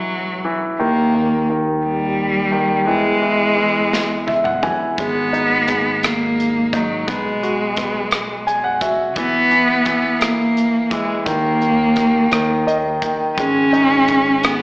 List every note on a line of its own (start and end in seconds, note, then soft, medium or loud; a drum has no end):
0.00 0.77 E1 medium
0.00 0.45 E3 medium
0.00 0.54 F#3 medium
0.45 0.79 E3 soft
0.79 2.84 D#2 medium
0.79 1.13 D#3 medium
0.79 1.46 A#3 medium
1.14 1.48 D#3 soft
1.50 2.50 D#3 soft
1.85 2.85 G3 medium
2.52 2.86 D#3 soft
2.87 4.95 E2 medium
2.87 3.20 E3 soft
2.87 4.59 G#3 medium
3.21 3.54 E3 soft
3.56 4.61 E3 soft
3.93 snare soft
4.27 4.44 E5 medium
4.27 high tom medium
4.44 4.61 F#5 soft
4.44 mid tom medium
4.63 4.97 E3 soft
4.63 4.96 G#5 soft
4.63 mid tom medium
4.98 7.08 G#1 medium
4.98 5.66 G#3 medium
4.98 6.08 B3 medium
4.98 kick medium
4.98 closed hi-hat medium
5.33 6.69 D#4 soft
5.33 closed hi-hat soft
5.67 7.03 G#3 soft
5.67 kick medium
5.67 closed hi-hat medium
6.03 6.77 A#3 medium
6.03 cross-stick medium
6.03 closed hi-hat medium
6.40 closed hi-hat soft
6.73 7.12 F#3 medium
6.73 7.07 D#4 soft
6.73 kick medium
6.73 closed hi-hat medium
7.07 9.16 B1 medium
7.07 8.83 G#3 medium
7.07 7.77 B3 medium
7.07 kick medium
7.07 closed hi-hat medium
7.43 8.78 F#4 soft
7.43 closed hi-hat soft
7.76 9.13 B3 soft
7.76 kick medium
7.76 cross-stick soft
7.76 closed hi-hat medium
8.11 cross-stick medium
8.11 closed hi-hat medium
8.47 8.63 G#5 medium
8.47 closed hi-hat soft
8.64 8.80 F#5 medium
8.81 9.15 F#4 soft
8.81 9.14 E5 medium
8.81 kick medium
8.81 closed hi-hat medium
9.16 11.22 E2 medium
9.16 9.50 E3 medium
9.16 10.21 B3 medium
9.16 kick medium
9.16 closed hi-hat medium
9.51 9.85 E3 soft
9.51 closed hi-hat soft
9.85 10.90 E3 soft
9.85 kick medium
9.85 closed hi-hat medium
10.19 10.92 A#3 medium
10.19 cross-stick medium
10.19 closed hi-hat medium
10.57 closed hi-hat soft
10.90 11.26 E3 soft
10.90 11.26 G#3 medium
10.90 kick medium
10.90 closed hi-hat medium
11.25 12.28 D#2 medium
11.25 11.60 D#3 medium
11.25 13.02 A#3 medium
11.25 kick medium
11.25 closed hi-hat medium
11.62 11.94 D#3 soft
11.62 closed hi-hat soft
11.96 12.30 D#3 soft
11.96 kick medium
11.96 cross-stick soft
11.96 closed hi-hat medium
12.32 12.99 D#2 medium
12.32 12.65 D#3 medium
12.32 cross-stick medium
12.32 closed hi-hat medium
12.67 13.01 D#3 soft
12.67 13.00 D#5 soft
12.67 closed hi-hat soft
13.02 13.37 D#3 soft
13.02 13.35 G5 soft
13.02 kick medium
13.02 closed hi-hat medium
13.38 14.62 G#1 medium
13.38 14.08 G#3 medium
13.38 14.48 C#4 medium
13.38 kick medium
13.38 closed hi-hat medium
13.73 14.62 D#4 soft
13.73 closed hi-hat soft
14.08 14.62 G#3 soft
14.08 kick medium
14.08 closed hi-hat medium
14.43 14.62 B3 medium
14.43 cross-stick medium
14.43 closed hi-hat medium